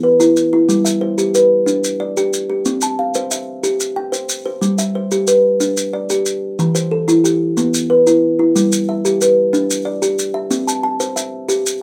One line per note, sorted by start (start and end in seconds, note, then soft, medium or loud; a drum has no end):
0.03 0.52 B4 medium
0.20 0.52 E4 medium
0.20 maracas medium
0.36 maracas medium
0.53 0.85 E4 medium
0.69 1.01 G3 medium
0.69 maracas medium
0.85 1.34 E5 medium
0.85 maracas medium
1.01 1.50 C5 medium
1.18 1.51 G4 medium
1.18 maracas medium
1.35 1.83 B4 medium
1.35 maracas medium
1.66 1.99 D4 medium
1.66 maracas medium
1.84 maracas medium
2.00 2.49 D5 medium
2.17 2.48 G4 medium
2.17 maracas medium
2.33 maracas medium
2.50 2.82 G4 medium
2.65 2.98 C4 medium
2.65 maracas medium
2.81 3.31 A5 medium
2.81 maracas medium
2.99 3.47 F5 medium
3.14 3.48 C5 medium
3.14 maracas medium
3.31 3.80 E5 medium
3.31 maracas medium
3.64 3.96 G4 medium
3.64 maracas medium
3.80 maracas medium
3.96 4.45 G5 medium
4.12 4.44 C5 medium
4.12 maracas medium
4.29 maracas medium
4.45 4.78 C5 medium
4.61 4.94 G3 medium
4.61 maracas medium
4.78 5.27 E5 medium
4.78 maracas medium
4.95 5.44 C5 medium
5.11 5.44 G4 medium
5.11 maracas medium
5.27 5.77 B4 medium
5.27 maracas medium
5.60 5.93 D4 medium
5.60 maracas medium
5.77 maracas medium
5.93 6.42 D5 medium
6.10 6.42 G4 medium
6.10 maracas medium
6.26 maracas medium
6.59 6.91 E3 medium
6.59 maracas medium
6.75 7.24 C5 medium
6.75 maracas medium
6.91 7.40 A4 medium
7.08 7.40 E4 medium
7.08 maracas medium
7.24 7.73 G4 medium
7.24 maracas medium
7.57 7.90 B3 medium
7.57 maracas medium
7.74 maracas medium
7.90 8.39 B4 medium
8.07 8.38 E4 medium
8.07 maracas medium
8.39 8.72 E4 medium
8.56 8.88 G3 medium
8.56 maracas medium
8.72 maracas medium
8.89 9.37 E5 medium
9.05 9.37 G4 medium
9.05 maracas medium
9.21 9.70 B4 medium
9.21 maracas medium
9.53 9.86 D4 medium
9.53 maracas medium
9.70 maracas medium
9.85 10.34 D5 medium
10.02 10.35 G4 medium
10.02 maracas medium
10.19 maracas medium
10.34 10.67 E5 medium
10.51 10.83 C4 medium
10.51 maracas medium
10.67 10.82 A5 medium
10.67 maracas medium
10.83 11.32 A5 medium
11.00 11.33 C5 medium
11.00 maracas medium
11.16 11.65 E5 medium
11.16 maracas medium
11.49 11.81 G4 medium
11.49 maracas medium
11.66 maracas medium